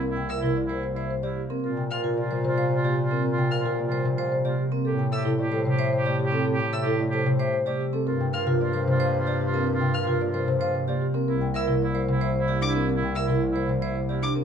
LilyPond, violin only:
\new Staff \with { instrumentName = "Violin" } { \time 3/4 \key g \dorian \tempo 4 = 112 r8 e'''16 r2 r16 | r8 f'''16 r2 r16 | r8 f'''16 r2 r16 | r8 e'''16 r2 r16 |
r8 e'''16 r2 r16 | r8 f'''16 r2 r16 | r8 f'''16 r2 r16 | r8 e'''16 r4. r16 d'''16 r16 |
r8 e'''16 r4. r16 d'''16 r16 | }